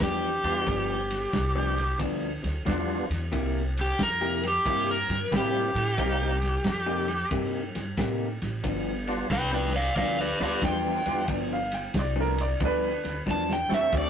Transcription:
0.00 E2 G2 F3 B3 D4 G4, kick, snare, ride
0.44 E2 G3 B3 D4 F4, snare, ride
0.66 G1 G2 F3 B3 D4, kick, snare, ride
1.11 snare, ride
1.33 C2, muted clean electric guitar stroke, kick, snare, ride
1.55 G2 F3 B3 D4
1.76 muted clean electric guitar stroke, snare, ride
1.99 D2 G2 F3 B3 D4, kick, snare, ride
2.42 D2, muted clean electric guitar stroke, snare, ride
2.65 E2 G2 F3 G3 B3 D4 F4, kick, snare, ride
3.10 E2, snare, ride
3.32 C2 C3 A#3 E4 G4, kick, snare, ride
3.77 G4, snare, ride
3.99 F2, muted clean electric guitar stroke, kick, snare, ride
4.03 A#4
4.21 C3 A#3 E4 G4
4.43 muted clean electric guitar stroke, snare, ride
4.48 G4
4.65 G2 C3 A#3 E4 G4, kick, snare, ride
4.91 A#4
5.09 G2, muted clean electric guitar stroke, snare, ride
5.31 A2 C3 G3 A#3 C4 E4 G4, kick, snare, ride
5.36 G4
5.75 A2, snare, ride
5.98 C2 C3 G3 A#3 C4 D#4 G4, kick, snare, ride
6.42 snare, ride
6.64 F2, muted clean electric guitar stroke, kick, snare, ride
6.86 C3 A#3 D#4 G4
7.08 muted clean electric guitar stroke, snare, ride
7.31 G2 C3 A#3 D#4 G4, kick, snare, ride
7.75 G2, muted clean electric guitar stroke, snare, ride
7.97 A2 C3 A#3 D#4 G4, kick, snare, ride
8.42 A1, snare, ride
8.63 G1 G2 F3 B3 D4, kick, snare, ride
9.07 G3 B3 D4 F4, snare, ride
9.30 C2 B4 G5, muted clean electric guitar stroke, kick, snare, ride
9.52 G2 F3 B3 D4 B4 G5
9.74 D5 F5, muted clean electric guitar stroke, snare, ride
9.96 D2 G2 F3 B3 D4 D5 F5, kick, snare, ride
10.21 B4 D5
10.39 D2 G3 B3 D4 F4 B4 D5, muted clean electric guitar stroke, snare, ride
10.62 E2 G2 F3 B3 D4 G5, kick, snare, ride
11.06 E2 G3 B3 D4 F4, snare, ride
11.28 G1 G2 F3 B3 D4 G5, kick, snare, ride
11.53 F5
11.72 G5, snare, ride
11.94 C2, muted clean electric guitar stroke, kick, snare, ride
11.99 D5
12.16 G2 F3 B3 D4
12.21 A#4
12.38 D5, muted clean electric guitar stroke, snare, ride
12.60 D2 G2 F3 B3 D4, kick, snare, ride
12.65 B4
13.04 D2, muted clean electric guitar stroke, snare, ride
13.26 E2 G2 F3 B3 D4, kick, snare
13.31 A5
13.50 G5, snare
13.69 E2 A3 C4 D4 F#4, snare
13.74 E5
13.92 D2 D3 A3 C4 F#4, kick, snare, ride
13.98 D5

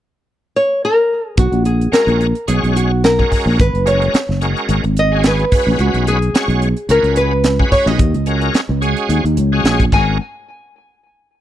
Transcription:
0.56 C#5
0.85 A#4
1.29 G#4
1.37 B1 F#4, kick, closed hi-hat
1.52 A#1, closed hi-hat
1.65 G#4, closed hi-hat
1.81 closed hi-hat
1.92 G#3 C#4 F#4 A#4, muted fretless electric bass stroke, snare, closed hi-hat
2.07 A#1, closed hi-hat
2.21 closed hi-hat
2.35 closed hi-hat
2.47 B1 G#3 C#4 F#4 G#4 C#5, closed hi-hat
2.63 B1, closed hi-hat
2.76 F#4, closed hi-hat
3.04 A#4, snare, closed hi-hat
3.18 G#3 C#4 F#4 A#4, kick
3.32 muted fretless electric bass stroke, kick, open hi-hat
3.45 A#1
3.59 G#1 B4, kick, closed hi-hat
3.73 F#1, closed hi-hat
3.86 G#3 C#4 F#4 A#4 C#5, closed hi-hat
4.02 closed hi-hat
4.14 muted fretless electric bass stroke, snare, closed hi-hat
4.29 F#1, snare
4.41 G#3 C#4 F#4 A#4, closed hi-hat
4.57 closed hi-hat
4.69 G#1, closed hi-hat
4.84 G#1, closed hi-hat
4.97 D#5, closed hi-hat
5.12 G#3 C#4 F#4 G#4
5.24 B4, snare, closed hi-hat
5.39 closed hi-hat
5.52 G#3 C#4 F#4 B4, muted fretless electric bass stroke, kick, open hi-hat
5.67 B1
5.79 C#2 F#4, closed hi-hat
5.94 B1, closed hi-hat
6.07 G#4, closed hi-hat
6.22 closed hi-hat
6.33 G#3 C#4 F#4 C#5, muted fretless electric bass stroke, snare, closed hi-hat
6.48 B1, closed hi-hat
6.62 closed hi-hat
6.77 closed hi-hat
6.89 C#2 G#3 C#4 F#4 A#4 B4, closed hi-hat
7.03 C#2, closed hi-hat
7.16 B4, closed hi-hat
7.44 snare, closed hi-hat
7.59 G#3 C#4 F#4 B4, kick
7.71 C#5, muted fretless electric bass stroke, kick, open hi-hat
7.86 B1 D#5
7.99 D#2, kick, closed hi-hat
8.13 C#2, closed hi-hat
8.26 G#3 C#4 F#4 A#4, closed hi-hat
8.41 closed hi-hat
8.54 snare, closed hi-hat
8.69 C#2
8.81 G#3 C#4 F#4 G#4, closed hi-hat
8.97 closed hi-hat
9.09 D#2, closed hi-hat
9.24 D#2, closed hi-hat
9.37 C#2, closed hi-hat
9.52 G#3 C#4 F#4 G#4
9.64 A#1, snare, closed hi-hat
9.80 kick, closed hi-hat
9.92 G#1 G#3 C#4 F#4 A#4 G#5, kick, crash

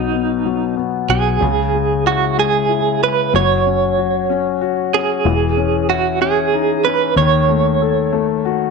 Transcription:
Already playing: B1 B2 F#3 D#4
0.13 B3
0.45 F#3
0.77 B3
1.09 B1 F#3 G#4
1.41 C#2 C#3
1.73 G#3
2.06 E4 F#4
2.38 G#3 G#4
2.69 E4
3.01 G#3 B4
3.33 F#1 F#3 C#5
3.66 C#4
3.97 F#4
4.30 C#4
4.61 F#4
4.93 C#4 G#4
5.25 E1 E3
5.57 C#4
5.89 E4 F#4
6.21 C#4 G#4
6.53 D#4
6.85 C#4 B4
7.16 D#2 D#3 C#5
7.48 A3
7.82 A4
8.12 A3
8.45 F#4

